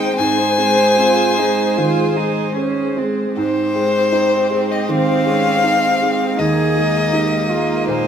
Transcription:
0.00 0.21 D#3 medium
0.00 0.16 G#3 medium
0.00 0.21 G#3 medium
0.00 0.21 C4 medium
0.00 0.16 D#4 medium
0.00 0.18 D#4 medium
0.00 3.37 C5 medium
0.00 0.18 G5 loud
0.00 0.18 G5 medium
0.17 1.74 G#2 medium
0.17 3.32 G#3 medium
0.17 0.40 C4 medium
0.17 3.36 G#4 medium
0.17 2.94 C5 medium
0.17 2.54 G#5 loud
0.39 0.60 D#4 medium
0.58 1.23 G#3 medium
0.58 0.79 C4 soft
0.78 0.97 D#4 medium
0.97 1.62 C4 medium
0.97 1.39 F4 medium
1.38 2.02 G#3 soft
1.38 1.78 D#4 medium
1.77 2.42 D#3 medium
1.77 2.17 F4 medium
2.16 2.82 G#3 soft
2.16 2.56 D#4 medium
2.56 2.99 C#4 medium
2.56 3.21 C5 soft
2.97 3.37 G#3 soft
2.97 3.37 C4 medium
3.37 4.84 G#2 medium
3.37 6.35 C4 medium
3.37 8.07 D#4 medium
3.37 6.35 G4 medium
3.37 6.35 C5 medium
3.37 4.73 C5 loud
3.75 4.36 G#3 soft
4.12 4.73 D#4 medium
4.51 5.11 G#3 soft
4.71 4.91 D#5 medium
4.88 5.49 D#3 soft
4.88 5.29 C4 medium
4.88 6.40 F5 loud
5.26 5.86 G#3 soft
5.26 5.66 C#4 medium
5.64 6.40 C4 medium
5.64 6.24 D#4 medium
6.02 6.39 G#3 soft
6.38 7.84 D#2 medium
6.38 8.07 G#3 medium
6.38 8.07 A#3 medium
6.38 7.16 G#4 medium
6.38 8.07 A#4 medium
6.38 7.88 D#5 medium
6.76 7.36 G#3 soft
7.13 7.73 D#4 medium
7.13 7.52 G4 medium
7.51 8.07 G#3 soft
7.51 7.90 F4 medium
7.88 8.07 A#2 soft
7.88 8.07 D#4 medium
7.88 8.07 C5 medium

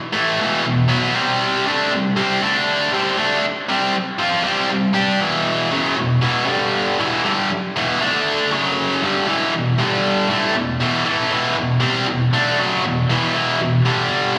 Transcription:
0.13 0.38 A2 medium
0.13 0.38 E3 medium
0.13 0.38 A3 loud
0.39 0.63 E2 medium
0.39 0.63 B2 medium
0.39 0.64 E3 medium
0.64 0.85 E2 medium
0.64 0.85 B2 medium
0.89 1.14 B2 medium
0.89 1.14 F#3 medium
0.89 1.14 B3 loud
1.14 1.65 C3 loud
1.14 1.65 G3 medium
1.14 1.65 C4 loud
1.67 1.91 D3 loud
1.67 1.91 A3 loud
1.67 1.91 D4 loud
1.92 2.12 C3 medium
1.92 2.12 G3 medium
2.16 2.41 C3 medium
2.16 2.41 G3 medium
2.16 2.42 C4 loud
2.42 2.92 D3 medium
2.42 2.92 A3 medium
2.42 2.92 D4 medium
2.92 3.17 C3 medium
2.92 3.17 G3 medium
2.92 3.18 C4 loud
3.17 3.43 D3 medium
3.17 3.43 A3 medium
3.17 3.43 D4 loud
3.44 muted distorted electric guitar stroke medium
3.69 3.92 C3 loud
3.69 3.94 G3 medium
3.69 3.94 C4 medium
3.94 muted distorted electric guitar stroke medium
4.18 4.43 F3 loud
4.18 4.43 C4 medium
4.18 4.44 F4 loud
4.43 4.69 C3 medium
4.43 4.69 G3 medium
4.43 4.69 C4 medium
4.71 4.91 C3 medium
4.71 4.91 G3 medium
4.94 5.20 G3 medium
4.94 5.20 D4 medium
4.94 5.20 G4 medium
5.21 5.71 E2 loud
5.21 5.71 B2 loud
5.21 5.71 E3 loud
5.72 5.96 F#2 loud
5.72 5.96 C#3 loud
5.72 5.97 F#3 loud
5.97 6.17 E2 medium
5.97 6.18 B2 medium
6.22 6.48 E2 medium
6.22 6.49 B2 medium
6.22 6.48 E3 loud
6.48 6.98 G2 medium
6.48 6.98 D3 medium
6.48 6.98 G3 loud
6.99 7.23 E2 medium
6.99 7.24 B2 medium
6.99 7.24 E3 medium
7.25 7.49 G2 medium
7.25 7.49 D3 medium
7.25 7.49 G3 loud
7.52 muted distorted electric guitar stroke medium
7.76 8.00 E2 medium
7.76 8.00 B2 medium
7.76 8.00 E3 loud
8.01 8.51 D3 medium
8.01 8.51 A3 medium
8.01 8.51 D4 loud
8.51 9.01 F#2 medium
8.51 9.01 C#3 medium
8.51 9.02 F#3 medium
9.03 9.26 G2 medium
9.03 9.27 D3 medium
9.03 9.27 G3 medium
9.27 9.52 E2 medium
9.27 9.52 B2 medium
9.27 9.52 E3 medium
9.53 9.73 E2 medium
9.53 9.73 B2 medium
9.78 10.28 G2 medium
9.78 10.29 D3 medium
9.78 10.29 G3 medium
10.29 10.54 A2 medium
10.29 10.54 E3 medium
10.29 10.54 A3 loud
10.55 10.75 E2 medium
10.55 10.75 B2 medium
10.80 11.05 E2 medium
10.80 11.05 B2 medium
10.80 11.04 E3 medium
11.05 11.30 A2 medium
11.05 11.30 E3 medium
11.05 11.30 A3 medium
11.30 11.55 E2 medium
11.30 11.56 B2 medium
11.30 11.56 E3 medium
11.56 11.76 E2 medium
11.56 11.77 B2 medium
11.80 12.06 C3 medium
11.80 12.06 G3 medium
11.80 12.06 C4 medium
12.06 12.27 E2 medium
12.06 12.28 B2 medium
12.33 12.58 D3 medium
12.33 12.58 A3 medium
12.33 12.58 D4 loud
12.58 12.82 F#2 medium
12.58 12.83 C#3 medium
12.58 12.83 F#3 medium
12.84 13.04 E2 medium
12.84 13.04 B2 medium
13.10 13.33 E2 medium
13.10 13.33 B2 medium
13.10 13.34 E3 loud
13.34 13.58 E2 medium
13.34 13.59 B2 medium
13.34 13.59 E3 medium
13.59 13.80 E2 medium
13.59 13.80 B2 medium
13.85 14.35 G2 medium
13.85 14.35 D3 medium
13.85 14.36 G3 loud

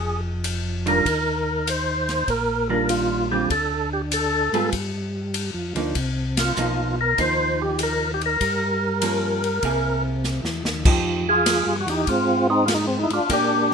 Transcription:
0.00 1.01 F1 medium
0.00 0.21 G#4 medium
0.44 hi-hat pedal medium
0.44 ride medium
0.86 1.03 D#3 medium
0.86 1.03 G3 medium
0.86 1.04 D4 medium
0.86 1.04 F4 medium
0.86 1.70 A#4 medium
0.86 ride soft
1.05 2.24 D#2 medium
1.05 kick soft
1.05 ride medium
1.67 2.31 C5 medium
1.67 hi-hat pedal medium
1.67 ride medium
2.09 snare soft
2.09 ride soft
2.28 3.46 A#1 medium
2.28 2.68 A#4 medium
2.28 kick soft
2.28 ride soft
2.69 3.27 D#3 soft
2.69 3.27 G3 medium
2.69 3.27 D4 medium
2.69 3.27 F4 medium
2.69 2.90 A#4 loud
2.89 3.28 F4 medium
2.89 hi-hat pedal soft
2.89 ride medium
3.31 3.48 D3 medium
3.31 3.49 G3 medium
3.31 3.49 C4 medium
3.31 3.49 F4 medium
3.31 3.49 G4 medium
3.50 4.49 D2 medium
3.50 3.90 A4 medium
3.50 kick soft
3.50 ride medium
3.93 4.02 G4 medium
4.11 4.70 A4 medium
4.11 hi-hat pedal medium
4.11 ride medium
4.52 4.71 G#2 medium
4.52 4.71 G3 medium
4.52 4.71 B3 medium
4.52 4.71 F4 medium
4.52 4.71 G#4 medium
4.52 ride soft
4.72 5.51 G2 medium
4.72 kick soft
4.72 ride medium
5.34 hi-hat pedal soft
5.34 ride medium
5.54 5.73 F2 medium
5.75 5.94 D2 medium
5.75 5.93 F3 medium
5.75 5.94 A#3 medium
5.75 5.94 D#4 medium
5.75 ride soft
5.95 6.53 C2 medium
5.95 kick soft
5.95 ride medium
6.37 6.96 F4 medium
6.37 snare medium
6.37 ride medium
6.57 7.14 B1 medium
6.57 6.95 F3 medium
6.57 6.95 A#3 medium
6.57 6.95 D#4 medium
6.57 hi-hat pedal medium
7.01 7.20 A#4 medium
7.18 8.37 D#2 medium
7.18 8.13 F3 medium
7.18 8.13 A#3 medium
7.18 8.14 D#4 medium
7.18 7.62 C5 medium
7.18 kick soft
7.18 ride medium
7.62 7.81 G4 medium
7.79 hi-hat pedal medium
7.79 ride medium
7.83 8.11 A#4 medium
8.14 8.22 G4 medium
8.21 ride soft
8.26 10.03 A#4 medium
8.41 9.59 G2 medium
8.41 kick soft
8.41 ride medium
9.02 9.40 F3 soft
9.02 9.40 A#3 medium
9.02 9.40 C#4 medium
9.02 hi-hat pedal medium
9.02 ride medium
9.44 ride soft
9.63 10.41 C2 medium
9.63 10.58 A#3 soft
9.63 10.59 E4 soft
9.63 10.59 G#4 medium
9.63 kick soft
9.63 ride soft
10.24 snare soft
10.24 hi-hat pedal medium
10.44 10.63 E2 medium
10.44 snare medium
10.64 10.84 D#2 medium
10.64 snare medium
10.85 11.63 F2 medium
10.85 11.23 F3 medium
10.85 11.24 G#3 medium
10.85 11.24 D#4 medium
10.85 11.24 G4 medium
10.85 kick medium
10.85 crash medium
11.29 11.77 F4 medium
11.29 11.76 G#4 medium
11.46 snare medium
11.46 hi-hat pedal medium
11.46 ride medium
11.66 11.86 G2 medium
11.81 11.89 F#4 medium
11.86 12.06 E2 medium
11.86 12.07 D#4 medium
11.86 12.09 G4 medium
11.86 ride soft
12.07 13.06 G#2 medium
12.07 12.48 C4 medium
12.07 12.47 F4 medium
12.07 kick soft
12.07 ride medium
12.50 12.65 C4 medium
12.50 12.66 D#4 medium
12.66 12.74 F4 medium
12.66 snare medium
12.66 hi-hat pedal soft
12.66 ride medium
12.74 12.86 D#4 medium
12.87 12.99 C4 medium
12.99 13.11 D#4 medium
13.03 13.12 E4 medium
13.10 13.20 G#2 soft
13.10 13.30 D4 medium
13.10 13.32 F4 medium
13.10 ride soft
13.29 13.74 A#2 medium
13.29 13.74 G#3 medium
13.29 13.74 D4 medium
13.29 13.74 G4 medium
13.29 kick soft
13.29 ride medium

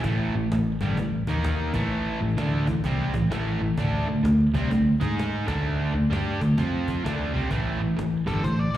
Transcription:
0.04 0.32 A1 loud
0.04 0.33 A2 medium
0.04 0.33 E3 medium
0.04 0.34 A3 medium
0.04 cajon bass loud
0.35 0.50 A1 medium
0.35 0.48 A2 medium
0.35 0.48 E3 medium
0.51 0.79 A1 medium
0.51 0.75 A2 medium
0.51 0.76 E3 medium
0.51 cajon slap loud
0.81 0.96 G1 medium
0.81 0.97 G2 medium
0.81 0.97 D3 medium
0.81 0.97 G3 medium
0.81 cajon bass medium
0.97 1.25 A1 medium
0.97 1.22 A2 medium
0.97 1.22 E3 medium
0.97 cajon bass medium
1.27 1.71 D#2 medium
1.27 1.73 D#3 loud
1.27 1.74 A#3 loud
1.27 1.74 D#4 loud
1.27 cajon bass medium
1.44 cajon slap loud
1.74 2.17 A1 medium
1.74 2.20 A2 medium
1.74 2.20 E3 medium
1.74 2.20 A3 medium
1.74 cajon bass loud
2.21 2.36 A1 medium
2.21 2.34 A2 medium
2.21 2.34 E3 medium
2.30 cajon slap soft
2.37 2.65 D2 loud
2.37 2.66 D3 medium
2.37 2.67 A3 loud
2.37 2.67 D4 medium
2.37 cajon slap loud
2.67 2.83 A1 medium
2.67 2.80 A2 medium
2.67 2.81 E3 medium
2.67 cajon bass medium
2.84 3.12 C2 loud
2.84 3.13 C3 medium
2.84 3.13 G3 medium
2.84 3.14 C4 loud
2.84 cajon bass medium
3.13 3.29 A1 medium
3.13 3.27 A2 medium
3.13 3.27 E3 medium
3.13 cajon bass medium
3.30 3.58 A1 medium
3.30 3.59 A2 medium
3.30 3.60 E3 medium
3.30 3.60 A3 loud
3.30 cajon slap loud
3.61 3.76 A1 medium
3.61 3.74 A2 medium
3.61 3.74 E3 medium
3.78 4.05 D2 loud
3.78 4.06 D3 medium
3.78 4.07 A3 medium
3.78 4.07 D4 loud
3.78 cajon bass loud
4.08 4.23 D2 medium
4.08 4.21 D3 medium
4.08 4.21 A3 medium
4.24 4.52 D2 medium
4.24 4.48 D3 medium
4.24 4.48 A3 medium
4.24 cajon slap loud
4.54 4.70 C2 medium
4.54 4.70 C3 medium
4.54 4.71 G3 medium
4.54 4.71 C4 loud
4.54 cajon bass medium
4.71 4.99 D2 medium
4.71 4.95 D3 medium
4.71 4.95 A3 medium
4.71 cajon bass medium
5.00 5.44 G#2 medium
5.00 5.46 G#3 loud
5.00 5.47 D#4 medium
5.00 5.47 G#4 loud
5.00 cajon bass medium
5.19 cajon slap loud
5.46 5.92 D2 medium
5.46 5.93 D3 medium
5.46 5.93 A3 medium
5.46 5.94 D4 loud
5.46 cajon bass loud
5.94 6.10 D2 medium
5.94 6.08 D3 medium
5.94 6.08 A3 medium
6.10 6.39 G2 medium
6.10 6.40 G3 medium
6.10 6.40 D4 medium
6.10 6.41 G4 loud
6.10 cajon slap medium
6.40 6.57 D2 medium
6.40 6.54 D3 medium
6.40 6.54 A3 medium
6.40 cajon bass medium
6.57 7.02 F2 medium
6.57 7.04 F3 medium
6.57 7.04 C4 medium
6.57 7.05 F4 loud
6.57 cajon bass medium
6.88 cajon bass medium
7.04 7.33 D2 medium
7.04 7.33 D3 medium
7.04 7.34 A3 medium
7.04 7.33 D4 loud
7.04 cajon slap loud
7.33 7.50 C2 medium
7.33 7.50 C3 medium
7.33 7.51 G3 medium
7.33 7.50 C4 loud
7.50 7.79 A1 medium
7.50 7.79 A2 medium
7.50 7.79 E3 medium
7.50 7.81 A3 loud
7.50 cajon bass loud
7.80 7.96 A1 medium
7.80 7.94 A2 medium
7.80 7.94 E3 medium
7.97 8.26 A1 medium
7.97 8.21 A2 medium
7.97 8.22 E3 medium
7.97 cajon slap medium
8.26 8.44 G1 medium
8.26 8.44 G2 medium
8.26 8.43 D3 medium
8.26 8.44 G3 loud
8.26 8.44 A4 medium
8.26 cajon bass medium
8.43 8.73 A1 medium
8.43 8.68 A2 medium
8.43 8.69 E3 medium
8.43 8.60 C5 medium
8.43 cajon bass medium
8.59 8.77 D5 medium
8.74 8.77 D#3 loud

